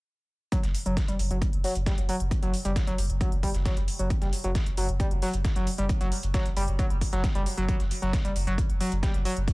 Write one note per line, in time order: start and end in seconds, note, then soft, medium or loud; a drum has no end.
0.52 0.58 F#3 loud
0.52 kick loud
0.52 closed hi-hat medium
0.63 0.74 F#1 medium
0.63 snare medium
0.63 closed hi-hat medium
0.74 closed hi-hat medium
0.74 open hi-hat loud
0.86 0.97 F#1 medium
0.86 0.95 F#3 medium
0.86 closed hi-hat medium
0.97 kick loud
0.97 snare loud
0.97 closed hi-hat medium
1.08 1.14 G3 medium
1.08 closed hi-hat soft
1.08 closed hi-hat medium
1.19 1.30 F#1 loud
1.19 closed hi-hat medium
1.19 open hi-hat loud
1.30 1.41 F#1 medium
1.30 1.37 F#3 loud
1.30 closed hi-hat medium
1.42 kick loud
1.42 closed hi-hat medium
1.53 1.64 F#1 medium
1.53 closed hi-hat medium
1.64 1.74 F#3 medium
1.64 open hi-hat medium
1.64 open hi-hat loud
1.75 1.86 F#1 medium
1.75 closed hi-hat soft
1.75 closed hi-hat medium
1.86 1.93 G3 medium
1.86 kick loud
1.86 snare loud
1.86 closed hi-hat medium
1.98 2.09 F#1 medium
1.98 closed hi-hat medium
2.09 2.15 F#3 loud
2.09 closed hi-hat medium
2.09 open hi-hat loud
2.20 2.31 F#1 medium
2.20 closed hi-hat medium
2.31 kick loud
2.31 closed hi-hat medium
2.42 2.53 F#1 medium
2.42 2.52 F#3 medium
2.42 closed hi-hat soft
2.42 closed hi-hat medium
2.54 closed hi-hat medium
2.54 open hi-hat loud
2.65 2.76 F#1 medium
2.65 2.71 G3 medium
2.65 closed hi-hat soft
2.65 closed hi-hat medium
2.76 kick loud
2.76 snare loud
2.76 closed hi-hat medium
2.87 2.93 F#3 loud
2.87 closed hi-hat medium
2.87 closed hi-hat soft
2.98 3.09 F#1 loud
2.98 closed hi-hat medium
2.98 open hi-hat loud
3.10 3.20 F#1 medium
3.10 closed hi-hat medium
3.21 3.30 F#3 medium
3.21 kick loud
3.21 closed hi-hat medium
3.32 3.43 F#1 medium
3.32 closed hi-hat medium
3.43 3.49 G3 medium
3.43 kick medium
3.43 closed hi-hat medium
3.43 open hi-hat loud
3.54 3.65 F#1 medium
3.54 snare medium
3.54 closed hi-hat medium
3.65 3.72 F#3 loud
3.65 kick loud
3.65 snare loud
3.65 closed hi-hat medium
3.77 3.88 F#1 medium
3.77 closed hi-hat medium
3.77 closed hi-hat soft
3.88 closed hi-hat medium
3.88 open hi-hat loud
3.99 4.10 F#1 medium
3.99 4.09 F#3 medium
3.99 closed hi-hat medium
4.10 kick loud
4.10 closed hi-hat medium
4.22 4.32 F#1 medium
4.22 4.28 G3 medium
4.22 snare soft
4.22 closed hi-hat medium
4.33 closed hi-hat medium
4.33 open hi-hat loud
4.44 4.55 F#1 medium
4.44 4.50 F#3 loud
4.44 closed hi-hat medium
4.55 kick loud
4.55 snare loud
4.55 closed hi-hat medium
4.66 closed hi-hat medium
4.66 closed hi-hat soft
4.77 4.88 F#1 loud
4.77 4.87 F#3 medium
4.77 closed hi-hat medium
4.77 open hi-hat loud
4.89 5.00 F#1 medium
4.89 closed hi-hat medium
5.00 5.06 G3 medium
5.00 kick loud
5.00 closed hi-hat medium
5.11 5.22 F#1 medium
5.11 closed hi-hat medium
5.22 5.29 F#3 loud
5.22 open hi-hat loud
5.22 open hi-hat medium
5.33 5.44 F#1 medium
5.33 closed hi-hat medium
5.33 closed hi-hat soft
5.45 kick loud
5.45 snare loud
5.45 closed hi-hat medium
5.56 5.67 F#1 medium
5.56 5.65 F#3 medium
5.56 closed hi-hat medium
5.67 closed hi-hat medium
5.67 open hi-hat loud
5.78 5.89 F#1 medium
5.78 5.85 G3 medium
5.78 closed hi-hat medium
5.89 kick loud
5.89 closed hi-hat medium
6.01 6.12 F#1 medium
6.01 6.07 F#3 loud
6.01 closed hi-hat medium
6.01 closed hi-hat soft
6.12 closed hi-hat medium
6.12 open hi-hat loud
6.23 6.34 F#1 medium
6.23 closed hi-hat soft
6.23 closed hi-hat medium
6.34 6.44 F#3 medium
6.34 kick loud
6.34 snare loud
6.34 closed hi-hat medium
6.46 closed hi-hat medium
6.46 closed hi-hat soft
6.56 6.67 F#1 loud
6.56 6.63 G3 medium
6.56 closed hi-hat medium
6.56 open hi-hat loud
6.68 6.79 F#1 medium
6.68 closed hi-hat soft
6.79 6.85 F#3 loud
6.79 kick loud
6.79 closed hi-hat medium
6.90 7.01 F#1 medium
6.90 closed hi-hat medium
7.01 kick medium
7.01 closed hi-hat medium
7.01 open hi-hat loud
7.13 7.23 F#1 medium
7.13 7.22 F#3 medium
7.13 snare soft
7.13 closed hi-hat medium
7.24 kick loud
7.24 snare loud
7.24 closed hi-hat medium
7.35 7.46 F#1 medium
7.35 7.41 G3 medium
7.35 closed hi-hat medium
7.35 closed hi-hat soft
7.46 closed hi-hat medium
7.46 open hi-hat loud
7.57 7.68 F#1 medium
7.57 7.64 F#3 medium
7.57 closed hi-hat medium
7.68 7.75 F#3 loud
7.68 kick loud
7.68 closed hi-hat medium
7.80 7.91 F#1 medium
7.80 snare soft
7.80 closed hi-hat medium
7.91 closed hi-hat medium
7.91 open hi-hat loud
8.02 8.13 F#1 medium
8.02 8.12 F#3 medium
8.02 closed hi-hat medium
8.13 kick loud
8.13 snare loud
8.13 closed hi-hat medium
8.25 8.31 G3 medium
8.25 closed hi-hat soft
8.36 8.46 F#1 loud
8.36 closed hi-hat medium
8.36 open hi-hat loud
8.47 8.58 F#1 medium
8.47 8.53 F#3 loud
8.47 closed hi-hat medium
8.58 kick loud
8.58 closed hi-hat medium
8.69 8.80 F#1 medium
8.69 closed hi-hat medium
8.80 8.90 F#3 medium
8.80 open hi-hat loud
8.80 open hi-hat medium
8.92 9.03 F#1 medium
8.92 closed hi-hat soft
9.03 9.09 G3 medium
9.03 kick loud
9.03 snare loud
9.03 closed hi-hat medium
9.14 9.25 F#1 medium
9.14 closed hi-hat medium
9.25 9.32 F#3 loud
9.25 closed hi-hat medium
9.25 open hi-hat loud
9.37 9.47 F#1 medium
9.37 closed hi-hat medium
9.48 kick loud
9.48 closed hi-hat medium